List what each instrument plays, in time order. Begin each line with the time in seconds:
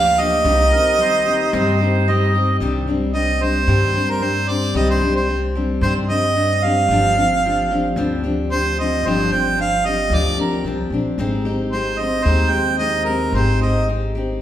Already playing: upright bass D2, steel-string acoustic guitar F3 A#3 D4 G4, string section F3 A#3 G4, harmonica F5
0.19 steel-string acoustic guitar F3 A#3 D4 G4, harmonica D#5
0.44 upright bass C2, steel-string acoustic guitar C3 G3 C4 D#4 G4, string section D#3 C4
0.72 steel-string acoustic guitar C4 D#4 G4, accordion A#4
0.98 steel-string acoustic guitar G3 C4 D#4 G4, accordion C5
1.26 steel-string acoustic guitar C4 D#4 G4
1.53 upright bass G2, steel-string acoustic guitar C3 G3 C4 D#4 G4, accordion C5
1.81 steel-string acoustic guitar C4 D#4 G4
2.08 steel-string acoustic guitar G3 C4 D#4 G4, accordion D#5
2.34 steel-string acoustic guitar C4 D#4 G4
2.60 upright bass C2, steel-string acoustic guitar C3 D#3 G3 C4 D4 G4
2.87 steel-string acoustic guitar G3 C4 D4 G4
3.13 steel-string acoustic guitar G3 C4 D4 G4, harmonica D#5
3.40 steel-string acoustic guitar G3 C4 D4 G4, harmonica C5
3.67 upright bass G2, steel-string acoustic guitar C3 D#3 G3 C4 D4 G4
3.93 steel-string acoustic guitar G3 C4 D4 G4
4.10 harmonica A#4
4.19 steel-string acoustic guitar G3 C4 D4 G4, harmonica C5
4.48 steel-string acoustic guitar G3 C4 D4 G4, harmonica D5
4.74 upright bass C2, steel-string acoustic guitar C3 D#3 G3 C4 D4 G4, harmonica D#5
4.90 harmonica C5
5.01 steel-string acoustic guitar G3 C4 D4 G4
5.16 harmonica C5
5.27 steel-string acoustic guitar G3 C4 D4 G4
5.55 steel-string acoustic guitar G3 C4 D4 G4
5.81 upright bass G2, steel-string acoustic guitar C3 D#3 G3 C4 D4 G4, harmonica C5
6.09 steel-string acoustic guitar G3 C4 D4 G4, harmonica D#5
6.35 steel-string acoustic guitar G3 C4 D4 G4
6.64 steel-string acoustic guitar G3 C4 D4 G4, harmonica F5
6.88 upright bass G1, steel-string acoustic guitar G2 D3 F3 C4 D4
6.93 steel-string acoustic guitar G4
7.15 steel-string acoustic guitar C4 D4 G4
7.19 steel-string acoustic guitar F3
7.45 steel-string acoustic guitar F3 C4 D4 G4
7.71 steel-string acoustic guitar F3 C4 D4 G4
7.96 upright bass D2, steel-string acoustic guitar G2 D3 F3 C4 D4 G4
8.24 steel-string acoustic guitar F3 C4 D4 G4
8.50 steel-string acoustic guitar F3 C4 D4 G4, harmonica C5
8.78 steel-string acoustic guitar F3 C4 D4 G4, harmonica D#5
9.03 upright bass G1, steel-string acoustic guitar G2 D3 F3 D4, harmonica C5
9.07 steel-string acoustic guitar C4 G4
9.31 steel-string acoustic guitar F3 C4 D4 G4, harmonica G5
9.57 steel-string acoustic guitar F3 C4 D4 G4, harmonica F5
9.85 steel-string acoustic guitar F3 C4 D4 G4, harmonica D#5
10.10 upright bass D2, steel-string acoustic guitar G2 D3 F3 C4 D4
10.14 steel-string acoustic guitar G4, harmonica D5
10.38 steel-string acoustic guitar F3 C4 D4 G4, harmonica A#4
10.64 upright bass C2, steel-string acoustic guitar F3 C4 D4 G4
10.90 upright bass A#1, steel-string acoustic guitar C4 D4 G4
10.95 steel-string acoustic guitar F3
11.18 upright bass G#1, steel-string acoustic guitar G#3 C4 D#4 G4
11.45 steel-string acoustic guitar C4 D#4 G4
11.72 steel-string acoustic guitar G#3 C4 D#4 G4, harmonica C5
11.99 steel-string acoustic guitar C4 D#4 G4, harmonica D#5
12.24 upright bass D#2, steel-string acoustic guitar G#3 C4 D#4, harmonica C5
12.28 steel-string acoustic guitar G4
12.50 steel-string acoustic guitar D#4 G4, harmonica G5
12.55 steel-string acoustic guitar C4
12.78 steel-string acoustic guitar G#3 C4 D#4 G4, harmonica D#5
13.04 steel-string acoustic guitar D#4 G4, harmonica A#4
13.09 steel-string acoustic guitar C4
13.32 upright bass G#1, steel-string acoustic guitar G#3 C4 D#4 G4, harmonica C5
13.61 steel-string acoustic guitar C4 D#4 G4, harmonica D#5
13.88 steel-string acoustic guitar G#3 C4 D#4 G4
14.15 steel-string acoustic guitar C4 D#4 G4